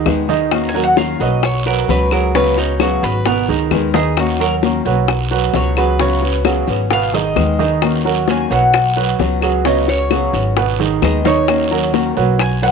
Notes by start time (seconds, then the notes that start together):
Already playing: D#3 D#4 G#4
0.05 D#2 D#3 G#3 B3 D#4 G#4, high bongo, low bongo, short guiro, claves
0.28 D#3 B3 D#4 G#4 D#5, short guiro
0.51 D#3 A#3 C#4 F#4, high bongo, long guiro, claves
0.69 G#5
0.74 F#3 A#3 C#4 F#4 A#4, high bongo
0.83 F#5
0.96 D#3 A#3 C#4 F#4 F5, high bongo, short guiro
1.20 B1 F#3 A#3 C#4 F#4 B4 D#5, high bongo, short guiro
1.43 C#5, muted nylon-string guitar stroke, high bongo, long guiro, claves
1.66 F#3 F#4 A#4 B4, high bongo
1.88 C#2 B2 F#3 B3 C#4 F#4 B4, high bongo, low bongo, short guiro
2.11 F#3 B3 C#4 F#4 G#4 A#4, short guiro, claves
2.35 C#3 F#3 B3 C#4 F#4 B4 C#5, high bongo, long guiro
2.57 B3 C#4 D#4 F#4, high bongo
2.80 C#3 F#3 B3 C#4 F#4 G#4, high bongo, short guiro, claves
3.03 G#1 B3 C#4 F#4 B4, high bongo, short guiro
3.26 B2 B3 A#4 B4, muted nylon-string guitar stroke, high bongo, long guiro
3.48 C#2 D#3 D#4 G#4, high bongo
3.71 D#2 D#3 G#3 B3 D#4 G#4, high bongo, low bongo, short guiro, claves
3.94 D#3 B3 D#4 G#4 D#5, high bongo, short guiro
4.17 D#3 A#3 C#4 F#4, high bongo, long guiro, claves, maracas
4.40 F#3 A#3 C#4 F#4 A#4, high bongo, maracas
4.63 D#3 A#3 C#4 F#4, high bongo, short guiro, maracas
4.85 B1 F#3 A#3 C#4 F#4 B4, high bongo, short guiro, maracas
5.08 muted nylon-string guitar stroke, high bongo, long guiro, claves, maracas
5.31 F#3 F#4 B4, high bongo, maracas
5.53 C#2 B2 F#3 B3 C#4 F#4 C#5, high bongo, low bongo, short guiro, maracas
5.77 F#3 B3 C#4 F#4 G#4 B4, short guiro, claves, maracas
5.99 C#3 F#3 B3 C#4 F#4 C#5, high bongo, long guiro, maracas
6.22 B3 C#4 F#4, high bongo, maracas
6.44 C#3 F#3 B3 C#4 F#4 G#4, high bongo, short guiro, claves, maracas
6.67 G#1 B3 C#4 F#4, high bongo, short guiro, maracas
6.91 B2 B3 B4 F5, muted nylon-string guitar stroke, high bongo, long guiro, maracas
7.14 D#3 D#4 G#4 D#5, high bongo, maracas
7.36 D#2 D#3 G#3 B3 D#4 G#4, high bongo, low bongo, short guiro, claves, maracas
7.59 D#3 B3 D#4 G#4 D#5, short guiro, maracas
7.81 D#3 A#3 C#4 F#4, high bongo, long guiro, claves, maracas
8.04 F#3 A#3 C#4 F#4 A#4, high bongo, maracas
8.28 D#3 A#3 C#4 F#4 G#5, high bongo, short guiro, maracas
8.50 B1 F#3 A#3 C#4 F#4 B4 F#5, high bongo, short guiro, maracas
8.74 muted nylon-string guitar stroke, high bongo, long guiro, claves, maracas
8.96 F#3 F#4 B4, high bongo, maracas
9.19 C#2 B2 F#3 B3 C#4 F#4, high bongo, low bongo, short guiro, maracas
9.41 F#3 B3 C#4 F#4 G#4, short guiro, claves, maracas
9.65 C#3 F#3 B3 C#4 F#4 C#5 D#5, high bongo, long guiro, maracas
9.88 B3 C#4 F#4 C#5, high bongo, maracas
10.10 C#3 F#3 B3 C#4 F#4 G#4, high bongo, short guiro, claves, maracas
10.33 G#1 B3 C#4 F#4, high bongo, short guiro, maracas
10.56 B2 B3 B4, muted nylon-string guitar stroke, high bongo, long guiro, maracas
10.79 D#3 D#4 G#4, high bongo, maracas
11.02 D#2 D#3 G#3 B3 D#4 G#4 D#5, high bongo, low bongo, short guiro, claves, maracas
11.24 D#3 B3 D#4 G#4 C#5 D#5, high bongo, short guiro, maracas
11.47 D#3 A#3 C#4 F#4, high bongo, long guiro, claves, maracas
11.70 F#3 A#3 C#4 F#4 A#4, high bongo, maracas
11.93 D#3 A#3 C#4 F#4, high bongo, short guiro, maracas
12.16 B1 F#3 A#3 C#4 F#4 B4, high bongo, short guiro, maracas
12.39 G#5, muted nylon-string guitar stroke, high bongo, long guiro, claves, maracas
12.62 F#3 F#4 B4 F#5, high bongo, maracas